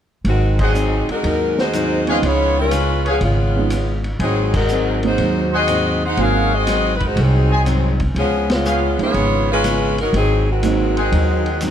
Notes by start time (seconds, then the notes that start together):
0.24 G#1 G#2 D#3 F#3 G#3 C4 D#4 F#4, ride
0.59 F#3 C4 D#4 G#4 C5 D#5 F#5, kick, crash
0.74 G#2 F#3 C4 D#4, hi-hat pedal
1.08 G#3 D#4 F#4 A#4, muted upright bass stroke, ride
1.23 D#2 G#2 F#3 C4 D#4, ride
1.58 G#3 D#4 F#4 C5, snare
1.73 G#2 F#3 C4 D#4, hi-hat pedal, ride
2.07 F3 G#3 B3 C4 C#4 D#4 F#4 G#4 B4 C#5 D#5 F5, ride
2.22 C#2 C#3 G#3 B3 F4 G#4 C#5, ride
2.59 G#3 C#4 F4 B4
2.71 C#3 G#3 B3 F4, hi-hat pedal, ride
3.05 F3 B3 C#4 G#4 B4 C#5 F5, ride
3.21 G#1 C#3 G#3 B3 C#4 F4, ride
3.56 F3 G#3 B3 C#4 D#4
3.70 C#3 G#3 B3 F4, hi-hat pedal, ride
4.04 ride
4.19 G#1 G#2 F#3 C4 D#4 G#4 C5 D#5 F#5, ride
4.24 D#4
4.54 G#3 D#4 F#4 A#4, kick, crash
4.68 G#2 F#3, hi-hat pedal
4.72 C4 D#4
5.03 F#3 G#3 A#3 C4 D#4 F#4 C5, ride
5.07 G#3
5.18 D#2 G#2 F#3 C4, ride
5.22 D#4
5.52 C4 F#4 G#4 C5 D#5 F#5
5.68 G#2 F#3 C4 D#4, hi-hat pedal, ride
6.05 D#4 G#4 C5 F#5
6.17 G#1 G#2 F#3 G#3 A#3 C4 C#4 D#4 F#4 G#4 A#4 C5 D#5 F5 F#5, ride
6.55 C4 F#4 G#4 D#5
6.67 G#2 F#3 C4 D#4, snare, hi-hat pedal, ride
6.95 B4
7.00 kick, ride
7.05 G#3 D#4 F#4 C5
7.16 C2 G#2 F#3 C4 D#4, ride
7.21 F#3 C4 D#4 G#4
7.50 G#4 C5 D#5 G#5
7.65 G#2 F#3 C4 D#4, hi-hat pedal, ride
8.00 kick, ride
8.15 C#2 C#3 F3 G#3 B3 C#4 F4 G#4, ride
8.50 G#3 B3 C#4 F4, snare, ride
8.65 C#3 G#3 B3 F4 G#4 B4 C#5 F5, hi-hat pedal
8.99 D2 F3 G#3 B3 C#4 D#4 F4 G#4 C#5, ride
9.14 G#1 C#3 G#3 B3 F4, ride
9.51 G#3 C#4 F4 B4
9.64 C#3 G#3 B3 F4, hi-hat pedal, ride
9.98 F#3 B3 D#4 A#4, ride
10.13 G#1 G#2 F#3 C4 D#4 G#4, ride
10.50 D#3 G#3 C4 F#4
10.63 G#2 F#3 G#3 A#3 C4 D#4, hi-hat pedal, ride
10.96 G#4 C5 D#5 F#5, ride
11.11 D#2 G#2 F#3 C4 D#4, ride
11.46 ride
11.61 G#2 F#3 C4 D#4, hi-hat pedal, ride